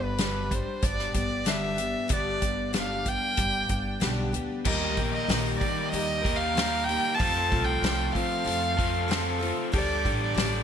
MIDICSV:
0, 0, Header, 1, 7, 480
1, 0, Start_track
1, 0, Tempo, 635593
1, 1587, Time_signature, 4, 2, 24, 8
1, 8029, End_track
2, 0, Start_track
2, 0, Title_t, "Tonewheel organ"
2, 0, Program_c, 0, 16
2, 3508, Note_on_c, 0, 79, 59
2, 3512, Note_on_c, 0, 82, 69
2, 3515, Note_on_c, 0, 70, 65
2, 5408, Note_off_c, 0, 79, 0
2, 5410, Note_off_c, 0, 82, 0
2, 5411, Note_off_c, 0, 70, 0
2, 5440, Note_on_c, 0, 77, 63
2, 5441, Note_on_c, 0, 84, 69
2, 5446, Note_on_c, 0, 69, 68
2, 7333, Note_off_c, 0, 77, 0
2, 7333, Note_off_c, 0, 84, 0
2, 7355, Note_on_c, 0, 79, 64
2, 7355, Note_on_c, 0, 86, 69
2, 8029, Note_off_c, 0, 69, 0
2, 8029, Note_off_c, 0, 79, 0
2, 8029, Note_off_c, 0, 86, 0
2, 8029, End_track
3, 0, Start_track
3, 0, Title_t, "Fiddle"
3, 0, Program_c, 1, 110
3, 0, Note_on_c, 1, 71, 77
3, 406, Note_on_c, 1, 72, 73
3, 418, Note_off_c, 1, 71, 0
3, 634, Note_on_c, 1, 74, 89
3, 645, Note_off_c, 1, 72, 0
3, 871, Note_off_c, 1, 74, 0
3, 882, Note_on_c, 1, 74, 79
3, 1114, Note_on_c, 1, 76, 91
3, 1125, Note_off_c, 1, 74, 0
3, 1591, Note_off_c, 1, 76, 0
3, 1608, Note_on_c, 1, 74, 84
3, 2048, Note_off_c, 1, 74, 0
3, 2092, Note_on_c, 1, 77, 82
3, 2329, Note_on_c, 1, 79, 103
3, 2341, Note_off_c, 1, 77, 0
3, 3039, Note_off_c, 1, 79, 0
3, 3515, Note_on_c, 1, 75, 83
3, 3847, Note_off_c, 1, 75, 0
3, 3865, Note_on_c, 1, 75, 80
3, 4201, Note_off_c, 1, 75, 0
3, 4213, Note_on_c, 1, 74, 78
3, 4448, Note_on_c, 1, 75, 97
3, 4459, Note_off_c, 1, 74, 0
3, 4803, Note_on_c, 1, 77, 94
3, 4815, Note_off_c, 1, 75, 0
3, 5166, Note_on_c, 1, 79, 102
3, 5178, Note_off_c, 1, 77, 0
3, 5396, Note_on_c, 1, 81, 105
3, 5408, Note_off_c, 1, 79, 0
3, 5774, Note_on_c, 1, 79, 93
3, 5785, Note_off_c, 1, 81, 0
3, 6131, Note_on_c, 1, 77, 91
3, 6142, Note_off_c, 1, 79, 0
3, 7098, Note_off_c, 1, 77, 0
3, 7356, Note_on_c, 1, 74, 81
3, 7685, Note_off_c, 1, 74, 0
3, 7720, Note_on_c, 1, 74, 72
3, 8029, Note_off_c, 1, 74, 0
3, 8029, End_track
4, 0, Start_track
4, 0, Title_t, "Steel-string acoustic guitar"
4, 0, Program_c, 2, 25
4, 0, Note_on_c, 2, 55, 43
4, 0, Note_on_c, 2, 59, 40
4, 0, Note_on_c, 2, 62, 42
4, 0, Note_on_c, 2, 67, 54
4, 143, Note_off_c, 2, 55, 0
4, 144, Note_off_c, 2, 67, 0
4, 145, Note_off_c, 2, 59, 0
4, 145, Note_off_c, 2, 62, 0
4, 145, Note_on_c, 2, 43, 69
4, 147, Note_on_c, 2, 50, 69
4, 152, Note_on_c, 2, 55, 65
4, 154, Note_on_c, 2, 59, 70
4, 154, Note_on_c, 2, 62, 66
4, 158, Note_on_c, 2, 67, 71
4, 376, Note_off_c, 2, 67, 0
4, 385, Note_off_c, 2, 62, 0
4, 385, Note_on_c, 2, 67, 53
4, 386, Note_off_c, 2, 43, 0
4, 387, Note_off_c, 2, 50, 0
4, 390, Note_off_c, 2, 55, 0
4, 391, Note_off_c, 2, 59, 0
4, 394, Note_on_c, 2, 62, 45
4, 404, Note_on_c, 2, 55, 42
4, 612, Note_off_c, 2, 55, 0
4, 621, Note_off_c, 2, 62, 0
4, 621, Note_on_c, 2, 55, 53
4, 626, Note_off_c, 2, 67, 0
4, 627, Note_on_c, 2, 59, 52
4, 630, Note_on_c, 2, 62, 57
4, 635, Note_on_c, 2, 67, 56
4, 844, Note_off_c, 2, 67, 0
4, 853, Note_off_c, 2, 62, 0
4, 853, Note_on_c, 2, 67, 45
4, 859, Note_off_c, 2, 59, 0
4, 862, Note_on_c, 2, 62, 49
4, 864, Note_off_c, 2, 55, 0
4, 868, Note_on_c, 2, 59, 37
4, 878, Note_on_c, 2, 55, 34
4, 1094, Note_on_c, 2, 43, 77
4, 1096, Note_off_c, 2, 55, 0
4, 1097, Note_off_c, 2, 59, 0
4, 1100, Note_off_c, 2, 62, 0
4, 1100, Note_off_c, 2, 67, 0
4, 1101, Note_on_c, 2, 50, 79
4, 1105, Note_on_c, 2, 55, 73
4, 1106, Note_on_c, 2, 59, 76
4, 1109, Note_on_c, 2, 62, 81
4, 1115, Note_on_c, 2, 67, 85
4, 1329, Note_off_c, 2, 67, 0
4, 1337, Note_off_c, 2, 62, 0
4, 1338, Note_on_c, 2, 67, 52
4, 1341, Note_off_c, 2, 43, 0
4, 1344, Note_off_c, 2, 50, 0
4, 1345, Note_off_c, 2, 59, 0
4, 1346, Note_off_c, 2, 55, 0
4, 1346, Note_on_c, 2, 62, 48
4, 1354, Note_on_c, 2, 59, 43
4, 1359, Note_on_c, 2, 55, 35
4, 1569, Note_on_c, 2, 43, 67
4, 1571, Note_off_c, 2, 55, 0
4, 1574, Note_off_c, 2, 59, 0
4, 1578, Note_off_c, 2, 62, 0
4, 1579, Note_on_c, 2, 50, 67
4, 1580, Note_on_c, 2, 55, 66
4, 1583, Note_off_c, 2, 67, 0
4, 1583, Note_on_c, 2, 59, 77
4, 1587, Note_on_c, 2, 62, 68
4, 1592, Note_on_c, 2, 67, 66
4, 1808, Note_off_c, 2, 67, 0
4, 1813, Note_off_c, 2, 62, 0
4, 1817, Note_on_c, 2, 67, 45
4, 1819, Note_off_c, 2, 43, 0
4, 1821, Note_off_c, 2, 59, 0
4, 1822, Note_on_c, 2, 62, 43
4, 1823, Note_off_c, 2, 50, 0
4, 1824, Note_off_c, 2, 55, 0
4, 1830, Note_on_c, 2, 59, 40
4, 1833, Note_on_c, 2, 55, 42
4, 2053, Note_off_c, 2, 55, 0
4, 2060, Note_off_c, 2, 67, 0
4, 2060, Note_on_c, 2, 43, 63
4, 2061, Note_off_c, 2, 59, 0
4, 2061, Note_off_c, 2, 62, 0
4, 2062, Note_on_c, 2, 50, 71
4, 2062, Note_on_c, 2, 55, 67
4, 2069, Note_on_c, 2, 67, 73
4, 2070, Note_on_c, 2, 59, 62
4, 2070, Note_on_c, 2, 62, 74
4, 2293, Note_off_c, 2, 67, 0
4, 2299, Note_off_c, 2, 62, 0
4, 2302, Note_on_c, 2, 67, 46
4, 2304, Note_off_c, 2, 43, 0
4, 2305, Note_off_c, 2, 50, 0
4, 2305, Note_off_c, 2, 55, 0
4, 2306, Note_off_c, 2, 59, 0
4, 2308, Note_on_c, 2, 62, 40
4, 2315, Note_on_c, 2, 59, 45
4, 2322, Note_on_c, 2, 55, 42
4, 2533, Note_off_c, 2, 55, 0
4, 2542, Note_on_c, 2, 55, 47
4, 2544, Note_off_c, 2, 59, 0
4, 2545, Note_off_c, 2, 67, 0
4, 2548, Note_off_c, 2, 62, 0
4, 2553, Note_on_c, 2, 59, 55
4, 2557, Note_on_c, 2, 62, 48
4, 2566, Note_on_c, 2, 67, 57
4, 2777, Note_off_c, 2, 67, 0
4, 2785, Note_off_c, 2, 55, 0
4, 2786, Note_off_c, 2, 62, 0
4, 2786, Note_on_c, 2, 67, 45
4, 2791, Note_off_c, 2, 59, 0
4, 2795, Note_on_c, 2, 62, 42
4, 2801, Note_on_c, 2, 59, 41
4, 2808, Note_on_c, 2, 55, 36
4, 3019, Note_off_c, 2, 55, 0
4, 3020, Note_off_c, 2, 59, 0
4, 3021, Note_on_c, 2, 43, 76
4, 3027, Note_off_c, 2, 62, 0
4, 3027, Note_off_c, 2, 67, 0
4, 3028, Note_on_c, 2, 55, 77
4, 3029, Note_on_c, 2, 50, 74
4, 3029, Note_on_c, 2, 59, 87
4, 3035, Note_on_c, 2, 67, 94
4, 3036, Note_on_c, 2, 62, 76
4, 3255, Note_off_c, 2, 67, 0
4, 3261, Note_off_c, 2, 62, 0
4, 3264, Note_off_c, 2, 43, 0
4, 3264, Note_on_c, 2, 67, 58
4, 3268, Note_off_c, 2, 55, 0
4, 3269, Note_off_c, 2, 50, 0
4, 3269, Note_off_c, 2, 59, 0
4, 3270, Note_on_c, 2, 62, 49
4, 3282, Note_on_c, 2, 59, 52
4, 3283, Note_on_c, 2, 55, 47
4, 3506, Note_off_c, 2, 55, 0
4, 3506, Note_off_c, 2, 67, 0
4, 3509, Note_off_c, 2, 62, 0
4, 3511, Note_on_c, 2, 51, 72
4, 3515, Note_off_c, 2, 59, 0
4, 3515, Note_on_c, 2, 55, 74
4, 3517, Note_on_c, 2, 63, 75
4, 3519, Note_on_c, 2, 58, 73
4, 3520, Note_on_c, 2, 67, 90
4, 3743, Note_off_c, 2, 67, 0
4, 3749, Note_off_c, 2, 63, 0
4, 3750, Note_off_c, 2, 51, 0
4, 3751, Note_off_c, 2, 55, 0
4, 3752, Note_on_c, 2, 67, 45
4, 3753, Note_off_c, 2, 58, 0
4, 3758, Note_on_c, 2, 63, 47
4, 3770, Note_on_c, 2, 58, 41
4, 3990, Note_off_c, 2, 67, 0
4, 3993, Note_off_c, 2, 63, 0
4, 3996, Note_off_c, 2, 58, 0
4, 3997, Note_on_c, 2, 55, 49
4, 4005, Note_on_c, 2, 58, 53
4, 4013, Note_on_c, 2, 63, 64
4, 4019, Note_on_c, 2, 67, 66
4, 4216, Note_off_c, 2, 67, 0
4, 4225, Note_on_c, 2, 67, 52
4, 4232, Note_off_c, 2, 55, 0
4, 4234, Note_off_c, 2, 63, 0
4, 4236, Note_off_c, 2, 58, 0
4, 4243, Note_on_c, 2, 63, 47
4, 4250, Note_on_c, 2, 58, 38
4, 4466, Note_off_c, 2, 67, 0
4, 4469, Note_off_c, 2, 58, 0
4, 4470, Note_on_c, 2, 51, 70
4, 4475, Note_off_c, 2, 63, 0
4, 4477, Note_on_c, 2, 55, 69
4, 4478, Note_on_c, 2, 58, 75
4, 4484, Note_on_c, 2, 63, 67
4, 4486, Note_on_c, 2, 67, 81
4, 4696, Note_off_c, 2, 67, 0
4, 4704, Note_off_c, 2, 63, 0
4, 4705, Note_on_c, 2, 67, 50
4, 4708, Note_off_c, 2, 51, 0
4, 4712, Note_off_c, 2, 55, 0
4, 4713, Note_off_c, 2, 58, 0
4, 4713, Note_on_c, 2, 63, 43
4, 4727, Note_on_c, 2, 58, 41
4, 4946, Note_off_c, 2, 67, 0
4, 4947, Note_on_c, 2, 55, 60
4, 4948, Note_off_c, 2, 58, 0
4, 4950, Note_off_c, 2, 63, 0
4, 4957, Note_on_c, 2, 58, 58
4, 4966, Note_on_c, 2, 63, 58
4, 4968, Note_on_c, 2, 67, 63
4, 5180, Note_off_c, 2, 67, 0
4, 5187, Note_off_c, 2, 55, 0
4, 5189, Note_on_c, 2, 67, 48
4, 5192, Note_off_c, 2, 58, 0
4, 5192, Note_off_c, 2, 63, 0
4, 5201, Note_on_c, 2, 63, 50
4, 5209, Note_on_c, 2, 58, 38
4, 5428, Note_off_c, 2, 67, 0
4, 5430, Note_off_c, 2, 58, 0
4, 5430, Note_on_c, 2, 53, 66
4, 5433, Note_on_c, 2, 60, 81
4, 5434, Note_off_c, 2, 63, 0
4, 5440, Note_on_c, 2, 65, 68
4, 5445, Note_on_c, 2, 69, 77
4, 5656, Note_off_c, 2, 69, 0
4, 5665, Note_on_c, 2, 69, 45
4, 5668, Note_off_c, 2, 53, 0
4, 5668, Note_off_c, 2, 65, 0
4, 5670, Note_off_c, 2, 60, 0
4, 5678, Note_on_c, 2, 65, 44
4, 5683, Note_on_c, 2, 60, 40
4, 5903, Note_off_c, 2, 60, 0
4, 5906, Note_off_c, 2, 69, 0
4, 5907, Note_on_c, 2, 53, 49
4, 5912, Note_off_c, 2, 65, 0
4, 5912, Note_on_c, 2, 60, 54
4, 5924, Note_on_c, 2, 65, 62
4, 5928, Note_on_c, 2, 69, 60
4, 6128, Note_off_c, 2, 69, 0
4, 6137, Note_on_c, 2, 69, 47
4, 6141, Note_off_c, 2, 65, 0
4, 6146, Note_off_c, 2, 53, 0
4, 6149, Note_off_c, 2, 60, 0
4, 6150, Note_on_c, 2, 65, 45
4, 6160, Note_on_c, 2, 60, 36
4, 6372, Note_off_c, 2, 60, 0
4, 6376, Note_on_c, 2, 53, 71
4, 6378, Note_off_c, 2, 65, 0
4, 6379, Note_off_c, 2, 69, 0
4, 6381, Note_on_c, 2, 60, 78
4, 6387, Note_on_c, 2, 65, 70
4, 6388, Note_on_c, 2, 69, 76
4, 6610, Note_off_c, 2, 69, 0
4, 6619, Note_on_c, 2, 69, 45
4, 6621, Note_off_c, 2, 53, 0
4, 6622, Note_off_c, 2, 65, 0
4, 6623, Note_off_c, 2, 60, 0
4, 6631, Note_on_c, 2, 65, 37
4, 6639, Note_on_c, 2, 60, 38
4, 6855, Note_off_c, 2, 60, 0
4, 6856, Note_on_c, 2, 53, 71
4, 6859, Note_off_c, 2, 65, 0
4, 6862, Note_off_c, 2, 69, 0
4, 6865, Note_on_c, 2, 60, 70
4, 6868, Note_on_c, 2, 65, 70
4, 6878, Note_on_c, 2, 69, 80
4, 7083, Note_off_c, 2, 69, 0
4, 7092, Note_on_c, 2, 69, 61
4, 7097, Note_off_c, 2, 65, 0
4, 7101, Note_off_c, 2, 53, 0
4, 7105, Note_off_c, 2, 60, 0
4, 7106, Note_on_c, 2, 65, 61
4, 7116, Note_on_c, 2, 60, 50
4, 7338, Note_on_c, 2, 50, 65
4, 7339, Note_off_c, 2, 69, 0
4, 7342, Note_on_c, 2, 55, 72
4, 7345, Note_off_c, 2, 60, 0
4, 7345, Note_off_c, 2, 65, 0
4, 7348, Note_on_c, 2, 62, 72
4, 7349, Note_on_c, 2, 67, 92
4, 7350, Note_on_c, 2, 69, 82
4, 7568, Note_off_c, 2, 69, 0
4, 7576, Note_off_c, 2, 67, 0
4, 7577, Note_on_c, 2, 69, 44
4, 7582, Note_off_c, 2, 50, 0
4, 7583, Note_off_c, 2, 55, 0
4, 7585, Note_on_c, 2, 67, 42
4, 7586, Note_off_c, 2, 62, 0
4, 7596, Note_on_c, 2, 62, 41
4, 7811, Note_off_c, 2, 62, 0
4, 7811, Note_on_c, 2, 55, 57
4, 7817, Note_off_c, 2, 67, 0
4, 7820, Note_on_c, 2, 62, 52
4, 7821, Note_off_c, 2, 69, 0
4, 7826, Note_on_c, 2, 67, 61
4, 7833, Note_on_c, 2, 69, 67
4, 8029, Note_off_c, 2, 55, 0
4, 8029, Note_off_c, 2, 62, 0
4, 8029, Note_off_c, 2, 67, 0
4, 8029, Note_off_c, 2, 69, 0
4, 8029, End_track
5, 0, Start_track
5, 0, Title_t, "Overdriven electric guitar"
5, 0, Program_c, 3, 29
5, 3533, Note_on_c, 3, 70, 76
5, 4692, Note_off_c, 3, 70, 0
5, 4701, Note_on_c, 3, 70, 80
5, 4720, Note_on_c, 3, 55, 75
5, 4730, Note_on_c, 3, 51, 67
5, 4930, Note_off_c, 3, 70, 0
5, 4936, Note_off_c, 3, 51, 0
5, 4939, Note_off_c, 3, 55, 0
5, 4945, Note_on_c, 3, 51, 69
5, 4971, Note_on_c, 3, 70, 82
5, 5409, Note_off_c, 3, 51, 0
5, 5424, Note_off_c, 3, 70, 0
5, 5424, Note_on_c, 3, 57, 77
5, 6634, Note_off_c, 3, 57, 0
5, 6637, Note_on_c, 3, 57, 79
5, 6643, Note_on_c, 3, 53, 67
5, 6851, Note_off_c, 3, 53, 0
5, 6862, Note_off_c, 3, 57, 0
5, 6865, Note_on_c, 3, 57, 79
5, 7341, Note_off_c, 3, 57, 0
5, 8029, End_track
6, 0, Start_track
6, 0, Title_t, "Upright bass"
6, 0, Program_c, 4, 32
6, 0, Note_on_c, 4, 31, 90
6, 455, Note_off_c, 4, 31, 0
6, 626, Note_on_c, 4, 31, 83
6, 824, Note_off_c, 4, 31, 0
6, 870, Note_on_c, 4, 31, 90
6, 1461, Note_off_c, 4, 31, 0
6, 1588, Note_on_c, 4, 31, 76
6, 2378, Note_off_c, 4, 31, 0
6, 2556, Note_on_c, 4, 31, 78
6, 2750, Note_off_c, 4, 31, 0
6, 2791, Note_on_c, 4, 31, 82
6, 2987, Note_off_c, 4, 31, 0
6, 3036, Note_on_c, 4, 35, 80
6, 3249, Note_off_c, 4, 35, 0
6, 3269, Note_on_c, 4, 38, 77
6, 3485, Note_off_c, 4, 38, 0
6, 3519, Note_on_c, 4, 39, 90
6, 3757, Note_off_c, 4, 39, 0
6, 3757, Note_on_c, 4, 34, 88
6, 3950, Note_off_c, 4, 34, 0
6, 3991, Note_on_c, 4, 34, 82
6, 4187, Note_off_c, 4, 34, 0
6, 4476, Note_on_c, 4, 39, 84
6, 5261, Note_off_c, 4, 39, 0
6, 5440, Note_on_c, 4, 41, 98
6, 5679, Note_on_c, 4, 36, 86
6, 5691, Note_off_c, 4, 41, 0
6, 5871, Note_off_c, 4, 36, 0
6, 5907, Note_on_c, 4, 36, 84
6, 6104, Note_off_c, 4, 36, 0
6, 6386, Note_on_c, 4, 41, 82
6, 7174, Note_off_c, 4, 41, 0
6, 7354, Note_on_c, 4, 38, 84
6, 7590, Note_on_c, 4, 33, 82
6, 7601, Note_off_c, 4, 38, 0
6, 7785, Note_off_c, 4, 33, 0
6, 7821, Note_on_c, 4, 33, 80
6, 8020, Note_off_c, 4, 33, 0
6, 8029, End_track
7, 0, Start_track
7, 0, Title_t, "Drums"
7, 139, Note_on_c, 9, 42, 86
7, 145, Note_on_c, 9, 38, 108
7, 215, Note_off_c, 9, 42, 0
7, 221, Note_off_c, 9, 38, 0
7, 387, Note_on_c, 9, 36, 81
7, 389, Note_on_c, 9, 42, 58
7, 462, Note_off_c, 9, 36, 0
7, 464, Note_off_c, 9, 42, 0
7, 623, Note_on_c, 9, 42, 74
7, 625, Note_on_c, 9, 36, 110
7, 698, Note_off_c, 9, 42, 0
7, 701, Note_off_c, 9, 36, 0
7, 749, Note_on_c, 9, 38, 31
7, 824, Note_off_c, 9, 38, 0
7, 863, Note_on_c, 9, 42, 59
7, 866, Note_on_c, 9, 36, 82
7, 939, Note_off_c, 9, 42, 0
7, 941, Note_off_c, 9, 36, 0
7, 1102, Note_on_c, 9, 42, 77
7, 1108, Note_on_c, 9, 38, 82
7, 1177, Note_off_c, 9, 42, 0
7, 1183, Note_off_c, 9, 38, 0
7, 1343, Note_on_c, 9, 42, 54
7, 1419, Note_off_c, 9, 42, 0
7, 1578, Note_on_c, 9, 42, 71
7, 1587, Note_on_c, 9, 36, 98
7, 1654, Note_off_c, 9, 42, 0
7, 1662, Note_off_c, 9, 36, 0
7, 1826, Note_on_c, 9, 42, 58
7, 1828, Note_on_c, 9, 36, 76
7, 1901, Note_off_c, 9, 42, 0
7, 1904, Note_off_c, 9, 36, 0
7, 2066, Note_on_c, 9, 42, 96
7, 2072, Note_on_c, 9, 38, 122
7, 2142, Note_off_c, 9, 42, 0
7, 2148, Note_off_c, 9, 38, 0
7, 2309, Note_on_c, 9, 42, 56
7, 2311, Note_on_c, 9, 36, 71
7, 2384, Note_off_c, 9, 42, 0
7, 2387, Note_off_c, 9, 36, 0
7, 2546, Note_on_c, 9, 42, 83
7, 2552, Note_on_c, 9, 36, 101
7, 2622, Note_off_c, 9, 42, 0
7, 2627, Note_off_c, 9, 36, 0
7, 2787, Note_on_c, 9, 42, 54
7, 2792, Note_on_c, 9, 36, 72
7, 2863, Note_off_c, 9, 42, 0
7, 2867, Note_off_c, 9, 36, 0
7, 3030, Note_on_c, 9, 42, 64
7, 3036, Note_on_c, 9, 38, 101
7, 3105, Note_off_c, 9, 42, 0
7, 3111, Note_off_c, 9, 38, 0
7, 3277, Note_on_c, 9, 42, 52
7, 3352, Note_off_c, 9, 42, 0
7, 3513, Note_on_c, 9, 49, 94
7, 3517, Note_on_c, 9, 36, 100
7, 3588, Note_off_c, 9, 49, 0
7, 3592, Note_off_c, 9, 36, 0
7, 3753, Note_on_c, 9, 46, 43
7, 3756, Note_on_c, 9, 36, 77
7, 3828, Note_off_c, 9, 46, 0
7, 3832, Note_off_c, 9, 36, 0
7, 3996, Note_on_c, 9, 46, 75
7, 4002, Note_on_c, 9, 38, 114
7, 4071, Note_off_c, 9, 46, 0
7, 4077, Note_off_c, 9, 38, 0
7, 4239, Note_on_c, 9, 36, 84
7, 4240, Note_on_c, 9, 46, 52
7, 4314, Note_off_c, 9, 36, 0
7, 4315, Note_off_c, 9, 46, 0
7, 4482, Note_on_c, 9, 46, 68
7, 4558, Note_off_c, 9, 46, 0
7, 4719, Note_on_c, 9, 36, 78
7, 4725, Note_on_c, 9, 46, 61
7, 4795, Note_off_c, 9, 36, 0
7, 4801, Note_off_c, 9, 46, 0
7, 4962, Note_on_c, 9, 46, 64
7, 4968, Note_on_c, 9, 38, 101
7, 5037, Note_off_c, 9, 46, 0
7, 5043, Note_off_c, 9, 38, 0
7, 5202, Note_on_c, 9, 46, 49
7, 5278, Note_off_c, 9, 46, 0
7, 5437, Note_on_c, 9, 36, 102
7, 5440, Note_on_c, 9, 46, 74
7, 5513, Note_off_c, 9, 36, 0
7, 5516, Note_off_c, 9, 46, 0
7, 5678, Note_on_c, 9, 36, 71
7, 5679, Note_on_c, 9, 46, 46
7, 5754, Note_off_c, 9, 36, 0
7, 5754, Note_off_c, 9, 46, 0
7, 5919, Note_on_c, 9, 46, 84
7, 5925, Note_on_c, 9, 38, 124
7, 5995, Note_off_c, 9, 46, 0
7, 6001, Note_off_c, 9, 38, 0
7, 6156, Note_on_c, 9, 36, 83
7, 6162, Note_on_c, 9, 46, 54
7, 6232, Note_off_c, 9, 36, 0
7, 6237, Note_off_c, 9, 46, 0
7, 6399, Note_on_c, 9, 46, 71
7, 6474, Note_off_c, 9, 46, 0
7, 6636, Note_on_c, 9, 36, 88
7, 6641, Note_on_c, 9, 46, 57
7, 6711, Note_off_c, 9, 36, 0
7, 6716, Note_off_c, 9, 46, 0
7, 6878, Note_on_c, 9, 46, 69
7, 6884, Note_on_c, 9, 38, 97
7, 6953, Note_off_c, 9, 46, 0
7, 6959, Note_off_c, 9, 38, 0
7, 7117, Note_on_c, 9, 46, 49
7, 7192, Note_off_c, 9, 46, 0
7, 7353, Note_on_c, 9, 36, 103
7, 7355, Note_on_c, 9, 46, 61
7, 7428, Note_off_c, 9, 36, 0
7, 7431, Note_off_c, 9, 46, 0
7, 7592, Note_on_c, 9, 36, 78
7, 7595, Note_on_c, 9, 46, 44
7, 7667, Note_off_c, 9, 36, 0
7, 7670, Note_off_c, 9, 46, 0
7, 7834, Note_on_c, 9, 46, 81
7, 7840, Note_on_c, 9, 38, 112
7, 7910, Note_off_c, 9, 46, 0
7, 7916, Note_off_c, 9, 38, 0
7, 8029, End_track
0, 0, End_of_file